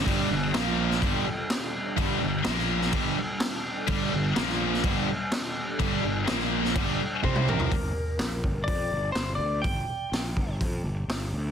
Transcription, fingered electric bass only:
\new Staff \with { instrumentName = "Fingered electric bass" } { \clef bass \time 4/4 \key g \minor \tempo 4 = 125 g,,8 g,,8 bes,,4 g,,8 r4. | g,,8 g,,8 bes,,4 r2 | g,,8 g,,8 bes,,4 g,,8 r4. | g,,8 g,,8 bes,,4 g,,8 r8 c,4 |
g,,8 r8 bes,,8 g,,8 f,8 g,,8 g,,8 d,8 | g,,8 r8 bes,,8 g,,8 f,8 g,,8 g,,8 d,8 | }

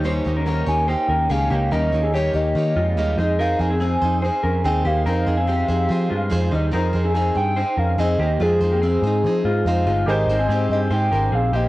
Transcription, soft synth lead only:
\new Staff \with { instrumentName = "Soft synth lead" } { \time 4/4 \key f \minor \tempo 4 = 144 r4. aes''8 g''4 f''4 | ees''4 des''8 ees''4. ees''8 ees''8 | f''8 aes''4. aes''4 g''8 f''8 | f''2.~ f''8 r8 |
r4. g''4 f''8 ees''4 | aes'2. f''4 | ees''4. ees''8 g''4 f''8 ees''8 | }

